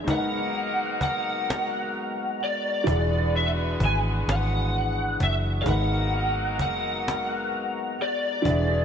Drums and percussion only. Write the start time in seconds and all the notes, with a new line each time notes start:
0.08 cajon bass
0.54 cajon slap
1.01 cajon bass
1.50 cajon slap
1.94 cajon slap
2.40 cajon slap
2.87 cajon bass
3.34 cajon slap
3.80 cajon bass
4.29 cajon slap
4.72 cajon slap
5.20 cajon bass
5.66 cajon bass
6.12 cajon slap
6.59 cajon bass
7.08 cajon slap
7.52 cajon slap
7.99 cajon slap
8.45 cajon bass